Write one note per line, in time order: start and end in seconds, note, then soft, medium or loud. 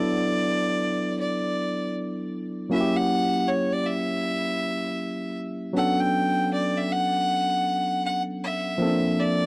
0.00 2.66 F#3 medium
0.00 2.67 B3 medium
0.00 2.68 D4 medium
0.00 2.68 E4 medium
0.00 2.72 A4 medium
0.00 1.16 D5 medium
1.20 1.92 D5 medium
2.70 5.70 F#3 medium
2.70 5.71 A#3 medium
2.70 5.71 C#4 medium
2.70 5.72 E4 medium
2.70 2.98 E5 medium
2.74 2.81 F#4 medium
2.81 5.76 G4 medium
2.96 3.49 F#5 loud
3.48 3.74 C#5 medium
3.73 3.87 D5 medium
3.86 5.37 E5 loud
5.73 8.74 F#3 medium
5.73 8.74 B3 medium
5.73 8.75 C#4 medium
5.73 8.76 D4 medium
5.73 6.01 F#5 loud
5.78 8.76 A4 medium
6.00 6.52 G5 loud
6.53 6.79 D5 medium
6.77 6.93 E5 medium
6.92 8.04 F#5 loud
8.06 8.22 F#5 medium
8.44 9.21 E5 medium
8.78 9.46 F3 medium
8.78 9.46 A#3 medium
8.78 9.46 C4 medium
8.78 8.88 C#4 soft
8.82 9.46 A4 medium
8.88 9.46 D4 medium
9.20 9.46 D5 medium